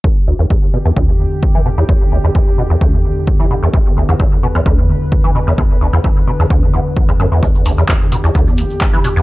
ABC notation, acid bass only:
X:1
M:4/4
L:1/16
Q:1/4=130
K:Em
V:1 name="Acid bass" clef=bass
E,, z D,, E,, E,, z B,, E,, D,, E,, D,, z2 E, B,, E,, | E,, z D,, E,, E,, z B,, E,, D,, E,, D,, z2 E, B,, E,, | E,, z D,, E,, E,, z B,, E,, D,, E,, D,, z2 E, B,, E,, | E,, z D,, E,, E,, z B,, E,, D,, E,, E,, z2 E,, F,, E,, |
E,, z D,, E,, E,, z B,, E,, D,, E,, D,, z2 E, B,, E,, |]